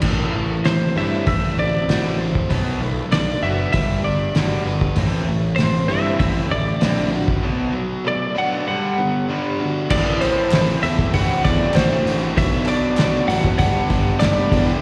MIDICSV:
0, 0, Header, 1, 6, 480
1, 0, Start_track
1, 0, Tempo, 616016
1, 28, Time_signature, 4, 2, 24, 8
1, 11544, End_track
2, 0, Start_track
2, 0, Title_t, "Clean electric guitar"
2, 0, Program_c, 0, 27
2, 511, Note_on_c, 0, 72, 82
2, 757, Note_off_c, 0, 72, 0
2, 760, Note_on_c, 0, 76, 83
2, 983, Note_off_c, 0, 76, 0
2, 993, Note_on_c, 0, 76, 85
2, 1237, Note_off_c, 0, 76, 0
2, 1240, Note_on_c, 0, 74, 77
2, 1684, Note_off_c, 0, 74, 0
2, 2435, Note_on_c, 0, 74, 94
2, 2667, Note_off_c, 0, 74, 0
2, 2670, Note_on_c, 0, 76, 93
2, 2894, Note_off_c, 0, 76, 0
2, 2903, Note_on_c, 0, 76, 97
2, 3149, Note_off_c, 0, 76, 0
2, 3152, Note_on_c, 0, 74, 80
2, 3601, Note_off_c, 0, 74, 0
2, 4332, Note_on_c, 0, 72, 92
2, 4581, Note_off_c, 0, 72, 0
2, 4584, Note_on_c, 0, 76, 94
2, 4817, Note_off_c, 0, 76, 0
2, 4826, Note_on_c, 0, 76, 89
2, 4892, Note_off_c, 0, 76, 0
2, 5076, Note_on_c, 0, 74, 88
2, 5523, Note_off_c, 0, 74, 0
2, 6295, Note_on_c, 0, 74, 85
2, 6529, Note_off_c, 0, 74, 0
2, 6532, Note_on_c, 0, 78, 95
2, 6752, Note_off_c, 0, 78, 0
2, 6761, Note_on_c, 0, 78, 93
2, 7445, Note_off_c, 0, 78, 0
2, 7723, Note_on_c, 0, 74, 86
2, 7956, Note_on_c, 0, 72, 90
2, 7964, Note_off_c, 0, 74, 0
2, 8438, Note_on_c, 0, 76, 93
2, 8448, Note_off_c, 0, 72, 0
2, 8676, Note_off_c, 0, 76, 0
2, 8680, Note_on_c, 0, 78, 97
2, 8915, Note_off_c, 0, 78, 0
2, 8918, Note_on_c, 0, 74, 96
2, 9158, Note_on_c, 0, 72, 94
2, 9162, Note_off_c, 0, 74, 0
2, 9489, Note_off_c, 0, 72, 0
2, 9645, Note_on_c, 0, 76, 96
2, 9877, Note_off_c, 0, 76, 0
2, 9880, Note_on_c, 0, 74, 102
2, 10324, Note_off_c, 0, 74, 0
2, 10348, Note_on_c, 0, 78, 93
2, 10572, Note_off_c, 0, 78, 0
2, 10590, Note_on_c, 0, 78, 99
2, 11058, Note_off_c, 0, 78, 0
2, 11061, Note_on_c, 0, 74, 91
2, 11399, Note_off_c, 0, 74, 0
2, 11544, End_track
3, 0, Start_track
3, 0, Title_t, "Overdriven electric guitar"
3, 0, Program_c, 1, 29
3, 277, Note_on_c, 1, 57, 62
3, 519, Note_on_c, 1, 60, 57
3, 758, Note_on_c, 1, 64, 66
3, 993, Note_off_c, 1, 57, 0
3, 994, Note_off_c, 1, 60, 0
3, 994, Note_off_c, 1, 64, 0
3, 1231, Note_on_c, 1, 60, 65
3, 1472, Note_on_c, 1, 66, 64
3, 1718, Note_on_c, 1, 72, 72
3, 1951, Note_off_c, 1, 60, 0
3, 1951, Note_off_c, 1, 66, 0
3, 1954, Note_off_c, 1, 72, 0
3, 2193, Note_on_c, 1, 57, 63
3, 2423, Note_on_c, 1, 62, 65
3, 2676, Note_on_c, 1, 66, 67
3, 2907, Note_off_c, 1, 62, 0
3, 2913, Note_off_c, 1, 57, 0
3, 2914, Note_off_c, 1, 66, 0
3, 3147, Note_on_c, 1, 62, 64
3, 3389, Note_on_c, 1, 66, 71
3, 3633, Note_on_c, 1, 71, 79
3, 3870, Note_off_c, 1, 62, 0
3, 3871, Note_off_c, 1, 66, 0
3, 3873, Note_off_c, 1, 71, 0
3, 4118, Note_on_c, 1, 57, 72
3, 4351, Note_on_c, 1, 60, 64
3, 4589, Note_on_c, 1, 64, 70
3, 4831, Note_off_c, 1, 64, 0
3, 4832, Note_off_c, 1, 60, 0
3, 4835, Note_off_c, 1, 57, 0
3, 5076, Note_on_c, 1, 57, 62
3, 5556, Note_on_c, 1, 66, 77
3, 5794, Note_off_c, 1, 66, 0
3, 5795, Note_off_c, 1, 57, 0
3, 6271, Note_on_c, 1, 57, 67
3, 6514, Note_on_c, 1, 62, 69
3, 6752, Note_off_c, 1, 57, 0
3, 6754, Note_off_c, 1, 62, 0
3, 6991, Note_on_c, 1, 59, 65
3, 7235, Note_on_c, 1, 62, 71
3, 7477, Note_on_c, 1, 66, 78
3, 7712, Note_off_c, 1, 59, 0
3, 7714, Note_off_c, 1, 62, 0
3, 7715, Note_off_c, 1, 66, 0
3, 11544, End_track
4, 0, Start_track
4, 0, Title_t, "Overdriven electric guitar"
4, 0, Program_c, 2, 29
4, 24, Note_on_c, 2, 45, 83
4, 32, Note_on_c, 2, 57, 90
4, 33, Note_on_c, 2, 52, 87
4, 252, Note_off_c, 2, 45, 0
4, 256, Note_off_c, 2, 52, 0
4, 256, Note_off_c, 2, 57, 0
4, 264, Note_on_c, 2, 45, 62
4, 267, Note_on_c, 2, 52, 73
4, 482, Note_off_c, 2, 45, 0
4, 484, Note_off_c, 2, 52, 0
4, 506, Note_on_c, 2, 45, 54
4, 511, Note_on_c, 2, 52, 74
4, 724, Note_off_c, 2, 45, 0
4, 726, Note_off_c, 2, 52, 0
4, 745, Note_on_c, 2, 45, 87
4, 749, Note_on_c, 2, 52, 94
4, 756, Note_on_c, 2, 57, 101
4, 967, Note_off_c, 2, 45, 0
4, 975, Note_off_c, 2, 52, 0
4, 976, Note_on_c, 2, 45, 78
4, 979, Note_off_c, 2, 57, 0
4, 987, Note_on_c, 2, 50, 85
4, 989, Note_on_c, 2, 57, 98
4, 1209, Note_off_c, 2, 45, 0
4, 1214, Note_off_c, 2, 50, 0
4, 1215, Note_off_c, 2, 57, 0
4, 1227, Note_on_c, 2, 45, 64
4, 1233, Note_on_c, 2, 50, 68
4, 1444, Note_off_c, 2, 45, 0
4, 1447, Note_off_c, 2, 50, 0
4, 1470, Note_on_c, 2, 45, 76
4, 1473, Note_on_c, 2, 50, 94
4, 1478, Note_on_c, 2, 57, 88
4, 1696, Note_off_c, 2, 45, 0
4, 1697, Note_off_c, 2, 50, 0
4, 1700, Note_off_c, 2, 57, 0
4, 1706, Note_on_c, 2, 45, 56
4, 1706, Note_on_c, 2, 50, 67
4, 1924, Note_off_c, 2, 45, 0
4, 1924, Note_off_c, 2, 50, 0
4, 1943, Note_on_c, 2, 47, 78
4, 1953, Note_on_c, 2, 59, 100
4, 1954, Note_on_c, 2, 54, 86
4, 2172, Note_off_c, 2, 47, 0
4, 2178, Note_off_c, 2, 54, 0
4, 2178, Note_off_c, 2, 59, 0
4, 2193, Note_on_c, 2, 47, 65
4, 2194, Note_on_c, 2, 54, 77
4, 2408, Note_off_c, 2, 47, 0
4, 2409, Note_off_c, 2, 54, 0
4, 2439, Note_on_c, 2, 47, 73
4, 2443, Note_on_c, 2, 54, 79
4, 2651, Note_off_c, 2, 47, 0
4, 2653, Note_off_c, 2, 54, 0
4, 2668, Note_on_c, 2, 47, 89
4, 2675, Note_on_c, 2, 54, 90
4, 2685, Note_on_c, 2, 59, 105
4, 2896, Note_off_c, 2, 47, 0
4, 2899, Note_off_c, 2, 54, 0
4, 2904, Note_off_c, 2, 59, 0
4, 2906, Note_on_c, 2, 43, 87
4, 2912, Note_on_c, 2, 50, 88
4, 2918, Note_on_c, 2, 55, 94
4, 3134, Note_off_c, 2, 43, 0
4, 3137, Note_off_c, 2, 50, 0
4, 3141, Note_off_c, 2, 55, 0
4, 3154, Note_on_c, 2, 43, 63
4, 3161, Note_on_c, 2, 50, 69
4, 3369, Note_off_c, 2, 43, 0
4, 3373, Note_off_c, 2, 50, 0
4, 3394, Note_on_c, 2, 43, 91
4, 3398, Note_on_c, 2, 50, 86
4, 3408, Note_on_c, 2, 55, 94
4, 3619, Note_off_c, 2, 43, 0
4, 3621, Note_off_c, 2, 50, 0
4, 3625, Note_off_c, 2, 55, 0
4, 3636, Note_on_c, 2, 43, 59
4, 3639, Note_on_c, 2, 50, 79
4, 3850, Note_off_c, 2, 43, 0
4, 3852, Note_off_c, 2, 50, 0
4, 3872, Note_on_c, 2, 45, 91
4, 3880, Note_on_c, 2, 52, 96
4, 3881, Note_on_c, 2, 60, 99
4, 4098, Note_off_c, 2, 45, 0
4, 4102, Note_off_c, 2, 52, 0
4, 4102, Note_off_c, 2, 60, 0
4, 4119, Note_on_c, 2, 45, 75
4, 4119, Note_on_c, 2, 52, 68
4, 4332, Note_off_c, 2, 45, 0
4, 4332, Note_off_c, 2, 52, 0
4, 4354, Note_on_c, 2, 52, 78
4, 4355, Note_on_c, 2, 45, 71
4, 4569, Note_off_c, 2, 52, 0
4, 4570, Note_off_c, 2, 45, 0
4, 4585, Note_on_c, 2, 45, 96
4, 4594, Note_on_c, 2, 52, 90
4, 4601, Note_on_c, 2, 60, 92
4, 4810, Note_off_c, 2, 45, 0
4, 4818, Note_off_c, 2, 60, 0
4, 4819, Note_off_c, 2, 52, 0
4, 4819, Note_on_c, 2, 45, 89
4, 4825, Note_on_c, 2, 50, 89
4, 4828, Note_on_c, 2, 60, 97
4, 5052, Note_off_c, 2, 45, 0
4, 5054, Note_off_c, 2, 50, 0
4, 5056, Note_off_c, 2, 60, 0
4, 5063, Note_on_c, 2, 45, 66
4, 5067, Note_on_c, 2, 50, 64
4, 5284, Note_off_c, 2, 45, 0
4, 5286, Note_off_c, 2, 50, 0
4, 5301, Note_on_c, 2, 45, 94
4, 5306, Note_on_c, 2, 50, 89
4, 5310, Note_on_c, 2, 60, 94
4, 5533, Note_off_c, 2, 45, 0
4, 5535, Note_off_c, 2, 50, 0
4, 5537, Note_off_c, 2, 60, 0
4, 5553, Note_on_c, 2, 45, 57
4, 5554, Note_on_c, 2, 50, 71
4, 5769, Note_off_c, 2, 45, 0
4, 5770, Note_off_c, 2, 50, 0
4, 5789, Note_on_c, 2, 47, 92
4, 5791, Note_on_c, 2, 54, 100
4, 5799, Note_on_c, 2, 59, 97
4, 6017, Note_off_c, 2, 47, 0
4, 6018, Note_off_c, 2, 54, 0
4, 6022, Note_off_c, 2, 59, 0
4, 6040, Note_on_c, 2, 54, 83
4, 6042, Note_on_c, 2, 47, 68
4, 6252, Note_off_c, 2, 54, 0
4, 6253, Note_off_c, 2, 47, 0
4, 6268, Note_on_c, 2, 47, 69
4, 6272, Note_on_c, 2, 54, 88
4, 6486, Note_off_c, 2, 47, 0
4, 6489, Note_off_c, 2, 54, 0
4, 6504, Note_on_c, 2, 47, 85
4, 6513, Note_on_c, 2, 54, 95
4, 6519, Note_on_c, 2, 59, 94
4, 6734, Note_off_c, 2, 47, 0
4, 6739, Note_off_c, 2, 54, 0
4, 6741, Note_off_c, 2, 59, 0
4, 6757, Note_on_c, 2, 43, 87
4, 6762, Note_on_c, 2, 50, 98
4, 6765, Note_on_c, 2, 55, 83
4, 6980, Note_off_c, 2, 43, 0
4, 6983, Note_off_c, 2, 50, 0
4, 6984, Note_off_c, 2, 55, 0
4, 7005, Note_on_c, 2, 43, 64
4, 7010, Note_on_c, 2, 50, 70
4, 7215, Note_off_c, 2, 43, 0
4, 7217, Note_off_c, 2, 50, 0
4, 7242, Note_on_c, 2, 43, 93
4, 7247, Note_on_c, 2, 50, 95
4, 7252, Note_on_c, 2, 55, 103
4, 7463, Note_off_c, 2, 43, 0
4, 7465, Note_off_c, 2, 50, 0
4, 7468, Note_off_c, 2, 55, 0
4, 7481, Note_on_c, 2, 43, 62
4, 7489, Note_on_c, 2, 50, 71
4, 7693, Note_off_c, 2, 43, 0
4, 7697, Note_off_c, 2, 50, 0
4, 7722, Note_on_c, 2, 45, 94
4, 7732, Note_on_c, 2, 52, 95
4, 7732, Note_on_c, 2, 57, 91
4, 7732, Note_on_c, 2, 60, 96
4, 7741, Note_on_c, 2, 64, 87
4, 8189, Note_off_c, 2, 45, 0
4, 8197, Note_off_c, 2, 52, 0
4, 8198, Note_on_c, 2, 45, 80
4, 8201, Note_off_c, 2, 57, 0
4, 8207, Note_off_c, 2, 60, 0
4, 8207, Note_off_c, 2, 64, 0
4, 8207, Note_on_c, 2, 52, 79
4, 8210, Note_on_c, 2, 57, 77
4, 8216, Note_on_c, 2, 60, 84
4, 8216, Note_on_c, 2, 64, 91
4, 8427, Note_off_c, 2, 45, 0
4, 8433, Note_off_c, 2, 52, 0
4, 8437, Note_off_c, 2, 57, 0
4, 8437, Note_on_c, 2, 45, 85
4, 8442, Note_off_c, 2, 60, 0
4, 8442, Note_on_c, 2, 52, 86
4, 8446, Note_on_c, 2, 57, 87
4, 8447, Note_off_c, 2, 64, 0
4, 8452, Note_on_c, 2, 60, 93
4, 8456, Note_on_c, 2, 64, 90
4, 8660, Note_off_c, 2, 45, 0
4, 8663, Note_off_c, 2, 52, 0
4, 8665, Note_off_c, 2, 57, 0
4, 8667, Note_off_c, 2, 60, 0
4, 8670, Note_off_c, 2, 64, 0
4, 8675, Note_on_c, 2, 45, 88
4, 8680, Note_on_c, 2, 50, 86
4, 8685, Note_on_c, 2, 57, 94
4, 8689, Note_on_c, 2, 60, 104
4, 8691, Note_on_c, 2, 66, 99
4, 9150, Note_off_c, 2, 45, 0
4, 9156, Note_off_c, 2, 50, 0
4, 9158, Note_off_c, 2, 57, 0
4, 9159, Note_on_c, 2, 45, 79
4, 9164, Note_off_c, 2, 60, 0
4, 9165, Note_off_c, 2, 66, 0
4, 9165, Note_on_c, 2, 50, 86
4, 9167, Note_on_c, 2, 57, 96
4, 9174, Note_on_c, 2, 60, 97
4, 9174, Note_on_c, 2, 66, 83
4, 9394, Note_off_c, 2, 45, 0
4, 9400, Note_off_c, 2, 50, 0
4, 9404, Note_off_c, 2, 60, 0
4, 9404, Note_on_c, 2, 45, 73
4, 9405, Note_off_c, 2, 57, 0
4, 9410, Note_on_c, 2, 50, 73
4, 9411, Note_off_c, 2, 66, 0
4, 9414, Note_on_c, 2, 60, 75
4, 9415, Note_on_c, 2, 57, 75
4, 9420, Note_on_c, 2, 66, 93
4, 9623, Note_off_c, 2, 45, 0
4, 9626, Note_off_c, 2, 50, 0
4, 9628, Note_off_c, 2, 57, 0
4, 9628, Note_off_c, 2, 60, 0
4, 9631, Note_off_c, 2, 66, 0
4, 9641, Note_on_c, 2, 47, 89
4, 9647, Note_on_c, 2, 54, 92
4, 9654, Note_on_c, 2, 59, 100
4, 9657, Note_on_c, 2, 62, 105
4, 9661, Note_on_c, 2, 66, 103
4, 10109, Note_off_c, 2, 47, 0
4, 10115, Note_off_c, 2, 54, 0
4, 10117, Note_off_c, 2, 59, 0
4, 10118, Note_on_c, 2, 47, 81
4, 10120, Note_off_c, 2, 62, 0
4, 10124, Note_off_c, 2, 66, 0
4, 10124, Note_on_c, 2, 54, 72
4, 10126, Note_on_c, 2, 59, 76
4, 10129, Note_on_c, 2, 62, 92
4, 10134, Note_on_c, 2, 66, 88
4, 10350, Note_off_c, 2, 47, 0
4, 10352, Note_off_c, 2, 54, 0
4, 10353, Note_off_c, 2, 59, 0
4, 10359, Note_on_c, 2, 47, 83
4, 10360, Note_off_c, 2, 62, 0
4, 10361, Note_on_c, 2, 54, 92
4, 10362, Note_off_c, 2, 66, 0
4, 10362, Note_on_c, 2, 59, 90
4, 10370, Note_on_c, 2, 62, 99
4, 10372, Note_on_c, 2, 66, 97
4, 10580, Note_off_c, 2, 47, 0
4, 10581, Note_off_c, 2, 54, 0
4, 10581, Note_off_c, 2, 59, 0
4, 10585, Note_off_c, 2, 62, 0
4, 10586, Note_off_c, 2, 66, 0
4, 10587, Note_on_c, 2, 43, 93
4, 10592, Note_on_c, 2, 50, 106
4, 10593, Note_on_c, 2, 55, 91
4, 10599, Note_on_c, 2, 59, 92
4, 10603, Note_on_c, 2, 67, 105
4, 10604, Note_on_c, 2, 62, 103
4, 11061, Note_off_c, 2, 43, 0
4, 11067, Note_off_c, 2, 50, 0
4, 11069, Note_off_c, 2, 55, 0
4, 11071, Note_on_c, 2, 43, 76
4, 11074, Note_off_c, 2, 59, 0
4, 11076, Note_off_c, 2, 62, 0
4, 11076, Note_on_c, 2, 50, 82
4, 11079, Note_on_c, 2, 55, 92
4, 11083, Note_on_c, 2, 59, 80
4, 11084, Note_off_c, 2, 67, 0
4, 11085, Note_on_c, 2, 62, 94
4, 11093, Note_on_c, 2, 67, 96
4, 11304, Note_off_c, 2, 43, 0
4, 11306, Note_off_c, 2, 50, 0
4, 11312, Note_off_c, 2, 55, 0
4, 11314, Note_off_c, 2, 59, 0
4, 11314, Note_on_c, 2, 43, 72
4, 11315, Note_on_c, 2, 50, 79
4, 11320, Note_off_c, 2, 62, 0
4, 11322, Note_on_c, 2, 55, 80
4, 11324, Note_on_c, 2, 59, 78
4, 11326, Note_off_c, 2, 67, 0
4, 11329, Note_on_c, 2, 62, 81
4, 11336, Note_on_c, 2, 67, 88
4, 11536, Note_off_c, 2, 43, 0
4, 11537, Note_off_c, 2, 50, 0
4, 11540, Note_off_c, 2, 55, 0
4, 11541, Note_off_c, 2, 59, 0
4, 11544, Note_off_c, 2, 62, 0
4, 11544, Note_off_c, 2, 67, 0
4, 11544, End_track
5, 0, Start_track
5, 0, Title_t, "Picked electric bass"
5, 0, Program_c, 3, 34
5, 24, Note_on_c, 3, 33, 93
5, 189, Note_off_c, 3, 33, 0
5, 265, Note_on_c, 3, 33, 78
5, 430, Note_off_c, 3, 33, 0
5, 511, Note_on_c, 3, 33, 84
5, 674, Note_off_c, 3, 33, 0
5, 747, Note_on_c, 3, 43, 87
5, 912, Note_off_c, 3, 43, 0
5, 989, Note_on_c, 3, 33, 89
5, 1153, Note_off_c, 3, 33, 0
5, 1224, Note_on_c, 3, 33, 85
5, 1390, Note_off_c, 3, 33, 0
5, 1468, Note_on_c, 3, 33, 86
5, 1797, Note_off_c, 3, 33, 0
5, 1954, Note_on_c, 3, 35, 88
5, 2117, Note_off_c, 3, 35, 0
5, 2184, Note_on_c, 3, 35, 75
5, 2350, Note_off_c, 3, 35, 0
5, 2427, Note_on_c, 3, 35, 79
5, 2593, Note_off_c, 3, 35, 0
5, 2670, Note_on_c, 3, 30, 81
5, 2834, Note_off_c, 3, 30, 0
5, 2916, Note_on_c, 3, 31, 88
5, 3079, Note_off_c, 3, 31, 0
5, 3144, Note_on_c, 3, 31, 91
5, 3311, Note_off_c, 3, 31, 0
5, 3388, Note_on_c, 3, 31, 88
5, 3554, Note_off_c, 3, 31, 0
5, 3626, Note_on_c, 3, 31, 80
5, 3792, Note_off_c, 3, 31, 0
5, 3869, Note_on_c, 3, 33, 95
5, 4034, Note_off_c, 3, 33, 0
5, 4108, Note_on_c, 3, 33, 80
5, 4273, Note_off_c, 3, 33, 0
5, 4343, Note_on_c, 3, 33, 75
5, 4510, Note_off_c, 3, 33, 0
5, 4583, Note_on_c, 3, 43, 86
5, 4750, Note_off_c, 3, 43, 0
5, 4828, Note_on_c, 3, 33, 84
5, 4994, Note_off_c, 3, 33, 0
5, 5074, Note_on_c, 3, 33, 99
5, 5238, Note_off_c, 3, 33, 0
5, 5313, Note_on_c, 3, 34, 94
5, 5641, Note_off_c, 3, 34, 0
5, 7722, Note_on_c, 3, 33, 82
5, 8011, Note_off_c, 3, 33, 0
5, 8198, Note_on_c, 3, 33, 76
5, 8342, Note_off_c, 3, 33, 0
5, 8443, Note_on_c, 3, 40, 89
5, 8586, Note_off_c, 3, 40, 0
5, 8682, Note_on_c, 3, 33, 94
5, 8825, Note_off_c, 3, 33, 0
5, 8922, Note_on_c, 3, 40, 86
5, 9065, Note_off_c, 3, 40, 0
5, 9157, Note_on_c, 3, 33, 97
5, 9301, Note_off_c, 3, 33, 0
5, 9393, Note_on_c, 3, 33, 83
5, 9539, Note_off_c, 3, 33, 0
5, 9637, Note_on_c, 3, 35, 95
5, 9927, Note_off_c, 3, 35, 0
5, 10117, Note_on_c, 3, 35, 83
5, 10261, Note_off_c, 3, 35, 0
5, 10354, Note_on_c, 3, 33, 90
5, 10499, Note_off_c, 3, 33, 0
5, 10591, Note_on_c, 3, 31, 85
5, 10736, Note_off_c, 3, 31, 0
5, 10834, Note_on_c, 3, 31, 87
5, 10978, Note_off_c, 3, 31, 0
5, 11062, Note_on_c, 3, 31, 91
5, 11210, Note_off_c, 3, 31, 0
5, 11311, Note_on_c, 3, 40, 86
5, 11456, Note_off_c, 3, 40, 0
5, 11544, End_track
6, 0, Start_track
6, 0, Title_t, "Drums"
6, 11, Note_on_c, 9, 49, 102
6, 22, Note_on_c, 9, 36, 91
6, 89, Note_off_c, 9, 49, 0
6, 100, Note_off_c, 9, 36, 0
6, 503, Note_on_c, 9, 46, 50
6, 510, Note_on_c, 9, 38, 93
6, 581, Note_off_c, 9, 46, 0
6, 588, Note_off_c, 9, 38, 0
6, 986, Note_on_c, 9, 46, 49
6, 990, Note_on_c, 9, 36, 102
6, 1064, Note_off_c, 9, 46, 0
6, 1067, Note_off_c, 9, 36, 0
6, 1472, Note_on_c, 9, 46, 51
6, 1479, Note_on_c, 9, 38, 96
6, 1550, Note_off_c, 9, 46, 0
6, 1557, Note_off_c, 9, 38, 0
6, 1833, Note_on_c, 9, 36, 87
6, 1911, Note_off_c, 9, 36, 0
6, 1949, Note_on_c, 9, 46, 57
6, 1953, Note_on_c, 9, 36, 95
6, 2027, Note_off_c, 9, 46, 0
6, 2031, Note_off_c, 9, 36, 0
6, 2429, Note_on_c, 9, 46, 55
6, 2436, Note_on_c, 9, 38, 105
6, 2507, Note_off_c, 9, 46, 0
6, 2514, Note_off_c, 9, 38, 0
6, 2905, Note_on_c, 9, 46, 54
6, 2914, Note_on_c, 9, 36, 101
6, 2983, Note_off_c, 9, 46, 0
6, 2992, Note_off_c, 9, 36, 0
6, 3389, Note_on_c, 9, 46, 48
6, 3396, Note_on_c, 9, 38, 98
6, 3466, Note_off_c, 9, 46, 0
6, 3473, Note_off_c, 9, 38, 0
6, 3750, Note_on_c, 9, 36, 83
6, 3828, Note_off_c, 9, 36, 0
6, 3863, Note_on_c, 9, 46, 54
6, 3870, Note_on_c, 9, 36, 93
6, 3941, Note_off_c, 9, 46, 0
6, 3948, Note_off_c, 9, 36, 0
6, 4348, Note_on_c, 9, 46, 52
6, 4355, Note_on_c, 9, 38, 100
6, 4426, Note_off_c, 9, 46, 0
6, 4433, Note_off_c, 9, 38, 0
6, 4830, Note_on_c, 9, 36, 113
6, 4832, Note_on_c, 9, 46, 53
6, 4908, Note_off_c, 9, 36, 0
6, 4910, Note_off_c, 9, 46, 0
6, 5307, Note_on_c, 9, 46, 56
6, 5314, Note_on_c, 9, 38, 110
6, 5385, Note_off_c, 9, 46, 0
6, 5392, Note_off_c, 9, 38, 0
6, 5673, Note_on_c, 9, 36, 83
6, 5751, Note_off_c, 9, 36, 0
6, 7716, Note_on_c, 9, 49, 119
6, 7719, Note_on_c, 9, 36, 106
6, 7794, Note_off_c, 9, 49, 0
6, 7797, Note_off_c, 9, 36, 0
6, 7962, Note_on_c, 9, 46, 61
6, 7966, Note_on_c, 9, 39, 63
6, 8040, Note_off_c, 9, 46, 0
6, 8044, Note_off_c, 9, 39, 0
6, 8193, Note_on_c, 9, 39, 90
6, 8201, Note_on_c, 9, 46, 79
6, 8208, Note_on_c, 9, 38, 108
6, 8271, Note_off_c, 9, 39, 0
6, 8278, Note_off_c, 9, 46, 0
6, 8285, Note_off_c, 9, 38, 0
6, 8444, Note_on_c, 9, 46, 52
6, 8522, Note_off_c, 9, 46, 0
6, 8561, Note_on_c, 9, 36, 88
6, 8639, Note_off_c, 9, 36, 0
6, 8677, Note_on_c, 9, 46, 73
6, 8681, Note_on_c, 9, 36, 100
6, 8755, Note_off_c, 9, 46, 0
6, 8759, Note_off_c, 9, 36, 0
6, 8920, Note_on_c, 9, 46, 65
6, 8922, Note_on_c, 9, 36, 88
6, 8998, Note_off_c, 9, 46, 0
6, 9000, Note_off_c, 9, 36, 0
6, 9148, Note_on_c, 9, 39, 78
6, 9165, Note_on_c, 9, 46, 68
6, 9172, Note_on_c, 9, 38, 107
6, 9226, Note_off_c, 9, 39, 0
6, 9243, Note_off_c, 9, 46, 0
6, 9250, Note_off_c, 9, 38, 0
6, 9406, Note_on_c, 9, 46, 57
6, 9484, Note_off_c, 9, 46, 0
6, 9642, Note_on_c, 9, 36, 106
6, 9644, Note_on_c, 9, 46, 84
6, 9720, Note_off_c, 9, 36, 0
6, 9722, Note_off_c, 9, 46, 0
6, 9864, Note_on_c, 9, 39, 62
6, 9879, Note_on_c, 9, 46, 70
6, 9942, Note_off_c, 9, 39, 0
6, 9957, Note_off_c, 9, 46, 0
6, 10108, Note_on_c, 9, 39, 87
6, 10115, Note_on_c, 9, 46, 77
6, 10122, Note_on_c, 9, 38, 102
6, 10186, Note_off_c, 9, 39, 0
6, 10193, Note_off_c, 9, 46, 0
6, 10200, Note_off_c, 9, 38, 0
6, 10361, Note_on_c, 9, 46, 66
6, 10439, Note_off_c, 9, 46, 0
6, 10476, Note_on_c, 9, 36, 91
6, 10553, Note_off_c, 9, 36, 0
6, 10585, Note_on_c, 9, 46, 79
6, 10593, Note_on_c, 9, 36, 92
6, 10663, Note_off_c, 9, 46, 0
6, 10671, Note_off_c, 9, 36, 0
6, 10831, Note_on_c, 9, 46, 59
6, 10832, Note_on_c, 9, 36, 91
6, 10908, Note_off_c, 9, 46, 0
6, 10910, Note_off_c, 9, 36, 0
6, 11072, Note_on_c, 9, 39, 88
6, 11075, Note_on_c, 9, 46, 74
6, 11082, Note_on_c, 9, 38, 104
6, 11149, Note_off_c, 9, 39, 0
6, 11153, Note_off_c, 9, 46, 0
6, 11160, Note_off_c, 9, 38, 0
6, 11313, Note_on_c, 9, 36, 78
6, 11315, Note_on_c, 9, 46, 57
6, 11391, Note_off_c, 9, 36, 0
6, 11393, Note_off_c, 9, 46, 0
6, 11544, End_track
0, 0, End_of_file